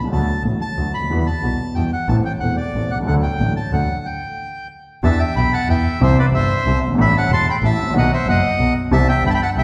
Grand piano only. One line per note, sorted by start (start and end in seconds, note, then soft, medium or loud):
0.03 0.07 C2 soft
0.03 0.11 C#2 soft
0.12 0.26 D2 medium
0.12 0.26 D3 medium
0.12 0.25 F#3 soft
0.12 0.26 A3 soft
0.12 0.26 F#4 medium
0.45 0.59 A1 soft
0.45 0.59 A2 soft
0.45 0.59 D3 soft
0.45 0.59 F#3 soft
0.45 0.59 A3 soft
0.45 0.59 F#4 soft
0.78 0.91 D2 soft
0.78 0.92 D3 soft
0.78 0.91 F#3 soft
0.78 0.92 A3 soft
0.78 0.92 F#4 soft
0.99 1.02 C#2 soft
0.99 1.06 D2 soft
1.07 1.11 D#2 soft
1.07 1.24 E3 medium
1.11 1.24 E2 medium
1.11 1.25 G3 soft
1.11 1.25 B3 soft
1.11 1.25 F#4 medium
1.43 1.57 B1 soft
1.43 1.57 B2 soft
1.43 1.57 E3 soft
1.43 1.57 G3 soft
1.43 1.57 B3 soft
1.43 1.57 F#4 soft
1.76 1.90 E2 soft
1.76 1.90 E3 soft
1.76 1.90 G3 soft
1.76 1.90 B3 soft
1.76 1.90 F#4 soft
2.09 2.23 A1 medium
2.09 2.23 A2 medium
2.09 2.22 E3 soft
2.09 2.23 A3 soft
2.09 2.23 C4 soft
2.09 2.23 A4 medium
2.42 2.55 E1 soft
2.42 2.56 E2 soft
2.42 2.55 E3 soft
2.42 2.55 A3 soft
2.42 2.55 C4 soft
2.42 2.56 A4 soft
2.75 2.88 A1 soft
2.75 2.88 A2 soft
2.75 2.88 E3 soft
2.75 2.88 A3 soft
2.75 2.89 C4 soft
2.75 2.89 A4 soft
2.95 2.99 B1 soft
3.00 3.03 C2 soft
3.00 3.07 C#2 medium
3.06 3.20 D2 medium
3.06 3.20 D3 medium
3.06 3.20 F#3 soft
3.06 3.20 A3 soft
3.06 3.21 D4 soft
3.06 3.21 A4 medium
3.40 3.54 A1 soft
3.40 3.54 A2 soft
3.40 3.54 F#3 soft
3.40 3.54 A3 soft
3.40 3.54 D4 soft
3.40 3.54 A4 soft
3.73 3.86 D2 soft
3.73 3.86 D3 soft
3.73 3.86 F#3 soft
3.73 3.86 A3 soft
3.73 3.86 D4 soft
3.73 3.86 A4 soft
5.03 5.17 E2 medium
5.03 5.17 E3 medium
5.03 5.17 B3 medium
5.03 5.17 D4 medium
5.03 5.17 G4 medium
5.36 5.50 B1 soft
5.36 5.50 B2 soft
5.69 5.83 E2 medium
5.69 5.83 E3 medium
6.01 6.15 C2 medium
6.01 6.15 C3 medium
6.01 6.15 E3 medium
6.01 6.15 G3 medium
6.01 6.15 C4 medium
6.01 6.15 G4 medium
6.34 6.47 G1 soft
6.34 6.47 G2 medium
6.67 6.80 C2 medium
6.67 6.80 C3 medium
6.87 6.90 F#1 soft
6.87 6.94 G1 medium
6.95 6.98 G#1 medium
6.95 7.12 A1 medium
6.95 7.12 A2 medium
6.95 7.11 E3 medium
6.95 7.11 A3 medium
6.95 7.11 D4 medium
6.95 7.12 A4 medium
7.31 7.44 E1 medium
7.31 7.44 E2 medium
7.63 7.76 A1 medium
7.63 7.76 A2 medium
7.83 7.87 G#1 soft
7.83 7.91 A1 medium
7.89 7.94 A#1 medium
7.93 8.08 B1 medium
7.93 8.08 B2 medium
7.93 8.08 D#3 medium
7.93 8.08 F#3 medium
7.93 8.08 B3 medium
7.93 8.08 F#4 medium
8.26 8.40 F#1 medium
8.26 8.40 F#2 medium
8.59 8.73 B1 medium
8.59 8.73 B2 medium
8.92 9.05 C2 medium
8.92 9.05 C3 medium
8.92 9.05 E3 medium
8.92 9.05 G3 medium
8.92 9.05 C4 medium
8.92 9.05 G4 medium
9.24 9.38 G1 medium
9.24 9.38 G2 medium
9.57 9.64 C2 medium
9.57 9.64 C3 medium